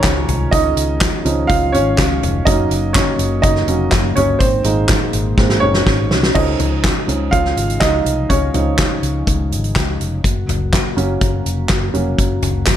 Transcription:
Already playing: tonewheel organ D#3 G#3 C#4 F4, upright piano F3 C#4 D#4 G#4 A#4 C#5 G#5 A#5
0.04 fingered electric bass C#2, kick, snare, clap, closed hi-hat
0.29 fingered electric bass C2, closed hi-hat, floor tom
0.51 fingered electric bass C#2, upright piano D#4 D#5, kick, closed hi-hat
0.76 fingered electric bass C#2, closed hi-hat
1.01 kick, snare, clap, closed hi-hat
1.25 fingered electric bass C#2, upright piano F3 C#4 D#4, closed hi-hat
1.47 fingered electric bass C#2, upright piano F4 F5, kick, closed hi-hat
1.72 fingered electric bass G#1, upright piano C#4 C#5, closed hi-hat
1.98 fingered electric bass C#2, kick, snare, clap, closed hi-hat
2.22 fingered electric bass F1, closed hi-hat, floor tom
2.45 fingered electric bass F#1, tonewheel organ C#3 F#3 A#3 F#4, upright piano F#3 A#3 C#4 D#4 D#5, kick, closed hi-hat
2.71 fingered electric bass F#1, closed hi-hat
2.93 upright piano C#4 C#5, kick, snare, clap, closed hi-hat
3.19 fingered electric bass F#1, closed hi-hat
3.42 fingered electric bass F#1, upright piano D#4 D#5, kick, closed hi-hat
3.56 snare
3.67 fingered electric bass F1, upright piano F#3 A#3 C#4, closed hi-hat
3.92 fingered electric bass F#1, kick, snare, clap, closed hi-hat
4.16 fingered electric bass G1, upright piano C#4 C#5, closed hi-hat, floor tom
4.39 fingered electric bass G#1, tonewheel organ A#2 G#3 D#4, upright piano C4 C5, kick, closed hi-hat
4.64 fingered electric bass G#1, upright piano G#3 A#3 D#4, closed hi-hat
4.88 kick, snare, clap, closed hi-hat
5.13 fingered electric bass G#1, closed hi-hat
5.38 fingered electric bass G#1, upright piano G#3 A#3 C4, kick, snare
5.50 snare
5.60 fingered electric bass F#1, upright piano C#4 C#5
5.74 snare
5.87 fingered electric bass G#1, kick, snare
6.11 fingered electric bass C2, snare
6.23 snare
6.35 fingered electric bass C#2, tonewheel organ C#3 F3 G#3 D#4, upright piano F3 C#4 D#4 D#5, kick, crash
6.59 fingered electric bass C#2, closed hi-hat, floor tom
6.84 kick, snare, clap, closed hi-hat
7.07 fingered electric bass C#2, upright piano F3 C#4 D#4, closed hi-hat
7.31 fingered electric bass C#2, upright piano F4 F5, kick, closed hi-hat
7.45 snare
7.56 fingered electric bass G#1, closed hi-hat
7.70 closed hi-hat
7.80 fingered electric bass C#2, upright piano D#4 D#5, kick, snare, clap, closed hi-hat
8.05 fingered electric bass C2, closed hi-hat
8.30 fingered electric bass C#2, upright piano C#4 C#5, kick, closed hi-hat
8.54 fingered electric bass C#2, upright piano F3 C#4 D#4, closed hi-hat, floor tom
8.78 kick, snare, clap, closed hi-hat
9.02 fingered electric bass C#2, closed hi-hat
9.27 fingered electric bass C#2, kick, closed hi-hat
9.51 fingered electric bass G#1, closed hi-hat
9.64 closed hi-hat
9.76 fingered electric bass C#2, kick, snare, clap, closed hi-hat
10.00 fingered electric bass F1, closed hi-hat
10.24 fingered electric bass F#1, tonewheel organ F#3 A#3 F#4, kick, closed hi-hat
10.48 fingered electric bass F#1, closed hi-hat, floor tom
10.73 kick, snare, clap, closed hi-hat
10.96 fingered electric bass F#1, upright piano F#3 A#3 C#4, closed hi-hat
11.21 fingered electric bass F#1, kick, closed hi-hat
11.46 fingered electric bass F1, closed hi-hat
11.69 fingered electric bass F#1, kick, snare, clap, closed hi-hat
11.93 fingered electric bass F1, upright piano F#3 A#3 C#4, closed hi-hat
12.18 fingered electric bass F#1, kick, closed hi-hat
12.42 fingered electric bass F#1, closed hi-hat, floor tom
12.66 kick, snare, clap, closed hi-hat

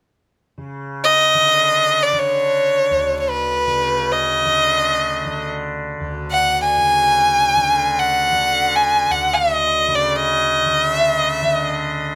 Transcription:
0.58 tanpura C#3
1.04 violin D#5
1.34 tanpura D3
2.03 violin D5
2.13 tanpura D3
2.19 violin C#5
2.91 tanpura D2
3.20 violin C#5
3.29 violin B4
3.67 tanpura C#3
4.12 violin D#5
4.45 tanpura D3
5.25 tanpura D3
6.00 tanpura D2
6.32 violin F#5
6.62 violin G#5
6.78 tanpura C#3
7.57 tanpura D3
7.99 violin F#5
8.32 tanpura D3
8.76 violin G#5
9.10 tanpura D2, violin F#5
9.33 violin D#5
9.88 tanpura C#3
9.95 violin D5
10.16 violin D#5
10.66 tanpura D3
10.91 violin E5
11.12 violin D#5
11.34 violin E5
11.42 tanpura D3
11.54 violin D#5

